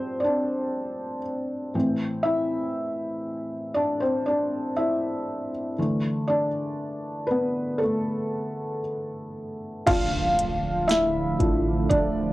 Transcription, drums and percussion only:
9.87 kick, closed hi-hat, crash
10.39 closed hi-hat
10.89 snare, closed hi-hat
11.40 kick, closed hi-hat
11.90 kick, closed hi-hat

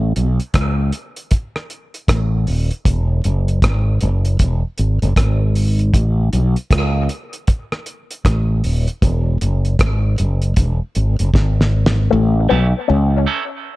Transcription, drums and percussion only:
0.16 closed hi-hat
0.40 closed hi-hat
0.54 kick, cross-stick, closed hi-hat
0.92 closed hi-hat
1.16 closed hi-hat
1.31 kick, closed hi-hat
1.56 cross-stick
1.70 closed hi-hat
1.94 closed hi-hat
2.08 kick, cross-stick, closed hi-hat
2.47 open hi-hat
2.71 closed hi-hat
2.85 kick, closed hi-hat
3.24 closed hi-hat
3.48 closed hi-hat
3.62 kick, cross-stick, closed hi-hat
4.01 closed hi-hat
4.25 closed hi-hat
4.39 kick, closed hi-hat
4.78 closed hi-hat
5.02 closed hi-hat
5.16 kick, cross-stick, closed hi-hat
5.55 open hi-hat
5.79 closed hi-hat
5.94 kick, closed hi-hat
6.33 closed hi-hat
6.56 closed hi-hat
6.71 kick, cross-stick, closed hi-hat
7.09 closed hi-hat
7.33 closed hi-hat
7.47 kick, closed hi-hat
7.72 cross-stick
7.86 closed hi-hat
8.11 closed hi-hat
8.25 kick, cross-stick, closed hi-hat
8.64 open hi-hat
8.87 closed hi-hat
9.02 kick, closed hi-hat
9.41 closed hi-hat
9.65 closed hi-hat
9.79 kick, cross-stick, closed hi-hat
10.18 closed hi-hat
10.42 closed hi-hat
10.56 kick, closed hi-hat
10.95 closed hi-hat
11.19 closed hi-hat
11.34 kick, snare
11.61 snare
11.86 snare

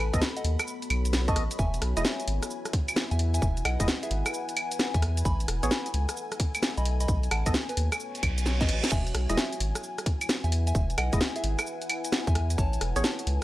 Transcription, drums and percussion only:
0.14 kick, closed hi-hat, cabasa
0.22 snare, cabasa
0.37 open hi-hat, cabasa
0.45 open hi-hat
0.59 cross-stick, closed hi-hat, cabasa, claves
0.67 cabasa
0.82 closed hi-hat, cabasa
0.90 open hi-hat, claves
1.05 closed hi-hat, cabasa
1.13 snare, cabasa
1.28 kick, closed hi-hat, cabasa
1.36 cross-stick, open hi-hat
1.51 closed hi-hat, cabasa
1.59 kick, cabasa
1.74 closed hi-hat, cabasa
1.82 cross-stick, open hi-hat
1.97 closed hi-hat, cabasa
2.05 snare, cabasa
2.20 closed hi-hat, cabasa
2.28 open hi-hat
2.43 cross-stick, closed hi-hat, cabasa
2.51 cabasa
2.65 cross-stick, closed hi-hat, cabasa
2.73 kick, open hi-hat
2.88 closed hi-hat, cabasa, claves
2.96 snare, cabasa
3.11 closed hi-hat, cabasa
3.19 open hi-hat
3.34 closed hi-hat, cabasa
3.42 kick, cabasa
3.57 closed hi-hat, cabasa
3.65 cross-stick, open hi-hat, claves
3.80 kick, closed hi-hat, cabasa
3.88 snare, cabasa
4.03 open hi-hat, cabasa
4.11 open hi-hat
4.26 cross-stick, closed hi-hat, cabasa, claves
4.34 cabasa
4.49 closed hi-hat, cabasa
4.57 open hi-hat, claves
4.72 closed hi-hat, cabasa
4.79 snare, cabasa
4.94 kick, closed hi-hat, cabasa
5.02 cross-stick, open hi-hat
5.17 closed hi-hat, cabasa
5.25 kick, cabasa
5.40 closed hi-hat, cabasa
5.48 cross-stick, open hi-hat
5.63 closed hi-hat, cabasa
5.71 snare, cabasa
5.86 closed hi-hat, cabasa
5.94 open hi-hat
6.09 cross-stick, closed hi-hat, cabasa
6.17 cabasa
6.32 cross-stick, closed hi-hat, cabasa
6.40 kick, open hi-hat
6.55 closed hi-hat, cabasa, claves
6.63 snare, cabasa
6.77 closed hi-hat, cabasa
6.85 open hi-hat
7.00 closed hi-hat, cabasa
7.08 kick, cabasa
7.23 closed hi-hat, cabasa
7.31 cross-stick, open hi-hat, claves
7.46 kick, closed hi-hat, cabasa
7.54 snare, cabasa
7.69 open hi-hat, cabasa
7.77 open hi-hat
7.92 cross-stick, closed hi-hat, cabasa, claves
8.00 cabasa
8.15 closed hi-hat, cabasa
8.23 kick, open hi-hat, claves
8.38 closed hi-hat, cabasa
8.46 snare, cabasa
8.61 kick, snare, closed hi-hat, cabasa
8.69 open hi-hat
8.84 snare, closed hi-hat, cabasa
8.92 kick, crash, cabasa
9.07 closed hi-hat, cabasa
9.15 cross-stick, open hi-hat
9.30 closed hi-hat, cabasa
9.38 snare, cabasa
9.53 closed hi-hat, cabasa
9.60 open hi-hat
9.75 cross-stick, closed hi-hat, cabasa
9.83 cabasa
9.98 cross-stick, closed hi-hat, cabasa
10.06 kick, open hi-hat
10.21 closed hi-hat, cabasa, claves
10.29 snare, cabasa
10.44 closed hi-hat, cabasa
10.52 open hi-hat
10.67 closed hi-hat, cabasa
10.75 kick, cabasa
10.90 closed hi-hat, cabasa
10.98 cross-stick, open hi-hat, claves
11.13 kick, closed hi-hat, cabasa
11.21 snare, cabasa
11.36 open hi-hat, cabasa
11.44 open hi-hat
11.59 cross-stick, closed hi-hat, cabasa, claves
11.67 cabasa
11.82 closed hi-hat, cabasa
11.90 open hi-hat, claves
12.04 closed hi-hat, cabasa
12.12 snare, cabasa
12.27 kick, closed hi-hat, cabasa
12.35 cross-stick, open hi-hat
12.50 closed hi-hat, cabasa
12.58 kick, cabasa
12.73 closed hi-hat, cabasa
12.81 cross-stick, open hi-hat
12.96 closed hi-hat, cabasa
13.04 snare, cabasa
13.19 closed hi-hat, cabasa
13.27 open hi-hat

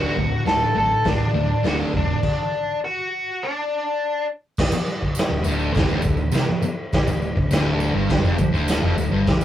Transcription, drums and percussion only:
0.17 kick
0.46 snare, open hi-hat
1.05 kick, snare, open hi-hat
1.64 snare, open hi-hat
1.94 kick
2.23 kick, crash
4.57 kick, snare, crash, tambourine
4.72 tambourine
4.86 tambourine
5.02 kick
5.15 tambourine, crash
5.19 snare
5.44 tambourine
5.59 tambourine
5.74 kick, snare, tambourine, crash
5.89 tambourine
6.02 kick, tambourine
6.17 tambourine
6.32 snare, tambourine, crash
6.62 tambourine
6.92 kick, snare, tambourine, crash
7.07 tambourine
7.22 tambourine
7.37 kick
7.51 snare, tambourine, crash
7.80 tambourine
8.10 kick, snare, tambourine, crash
8.24 tambourine
8.38 kick, tambourine
8.55 tambourine
8.68 snare, tambourine, crash
8.98 tambourine
9.27 kick, snare, tambourine, crash
9.41 tambourine

